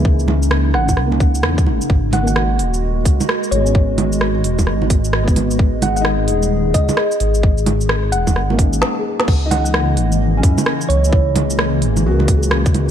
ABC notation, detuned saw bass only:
X:1
M:4/4
L:1/16
Q:"Swing 16ths" 1/4=130
K:C#dor
V:1 name="Detuned saw bass" clef=bass
C,,6 G,,,2 C,,4 E,,2 G,,, z | G,,,6 D,,,4 C,, z3 G,,,2- | G,,,6 D,,,2 G,,,8 | G,,,6 D,,,4 C,, z3 G,,,2- |
G,,,6 D,,,2 G,,,4 z4 | C,,6 G,,,4 F,, z3 C,,2- | C,,6 G,,,2 C,,8 |]